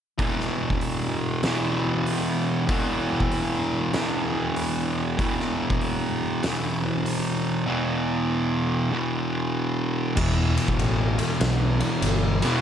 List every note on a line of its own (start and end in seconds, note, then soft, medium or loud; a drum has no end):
0.18 1.42 E2 medium
0.18 1.42 B2 medium
0.18 1.45 E3 medium
0.18 kick loud
0.18 open hi-hat soft
0.40 snare soft
0.70 kick medium
0.81 open hi-hat soft
1.43 2.67 E2 medium
1.43 2.68 B2 medium
1.43 2.70 E3 medium
1.43 snare loud
1.43 open hi-hat medium
2.06 open hi-hat medium
2.67 3.93 E2 medium
2.67 3.93 B2 medium
2.67 3.95 E3 medium
2.67 kick loud
2.67 open hi-hat soft
3.20 kick medium
3.32 open hi-hat soft
3.93 5.18 E2 medium
3.93 5.18 B2 medium
3.93 5.20 E3 medium
3.93 snare loud
3.93 open hi-hat soft
4.56 open hi-hat soft
5.18 6.43 E2 medium
5.18 6.43 B2 medium
5.18 6.46 E3 medium
5.18 kick loud
5.18 open hi-hat soft
5.40 snare soft
5.70 kick medium
5.81 open hi-hat soft
6.43 7.66 E2 medium
6.43 7.67 B2 medium
6.43 7.69 E3 medium
6.43 snare loud
6.43 open hi-hat medium
7.06 open hi-hat medium
7.67 8.90 E2 medium
7.67 8.91 B2 medium
7.67 8.92 E3 medium
8.91 10.14 E2 medium
8.91 10.16 B2 medium
8.91 10.16 E3 medium
10.16 10.55 E1 loud
10.16 12.45 E2 medium
10.16 12.40 B2 medium
10.16 12.42 E3 loud
10.16 kick loud
10.16 crash loud
10.57 ride medium
10.68 kick medium
10.78 11.16 A1 medium
10.78 ride loud
11.19 ride medium
11.40 11.78 B1 loud
11.40 snare loud
11.40 ride loud
11.80 ride medium
12.01 12.39 G1 medium
12.01 ride loud
12.42 12.61 E2 medium
12.42 12.61 B2 medium
12.42 12.61 E3 medium
12.42 snare soft
12.42 ride medium